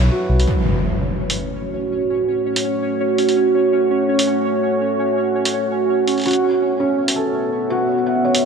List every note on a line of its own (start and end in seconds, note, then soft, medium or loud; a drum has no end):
0.00 0.43 F#3 medium
0.00 0.49 C#4 medium
0.00 0.43 E4 medium
0.00 0.11 F#4 loud
0.00 0.49 A4 medium
0.00 0.43 B4 medium
0.00 0.49 C#5 medium
0.00 0.49 F#5 medium
0.11 0.46 F#4 medium
0.29 0.46 B1 medium
0.40 open hi-hat soft
0.47 6.22 A3 medium
0.47 8.45 C#4 medium
0.47 8.45 F#4 medium
0.47 6.22 C#5 medium
0.47 8.45 C#5 medium
0.47 impact medium
1.30 open hi-hat medium
2.56 open hi-hat medium
3.18 open hi-hat soft
3.29 open hi-hat soft
4.19 open hi-hat medium
5.45 open hi-hat medium
6.08 open hi-hat soft
6.18 open hi-hat soft
6.20 open hi-hat soft
6.22 open hi-hat soft
6.24 6.43 F#4 medium
6.24 open hi-hat soft
6.26 8.45 B3 medium
6.26 8.45 E5 medium
6.26 open hi-hat soft
6.28 open hi-hat soft
6.31 open hi-hat soft
6.33 open hi-hat soft
6.80 7.14 C#4 medium
7.08 open hi-hat medium
7.16 7.69 A4 medium
7.70 7.88 F#4 medium
8.06 8.23 F#5 medium
8.25 8.45 C#5 medium
8.35 open hi-hat medium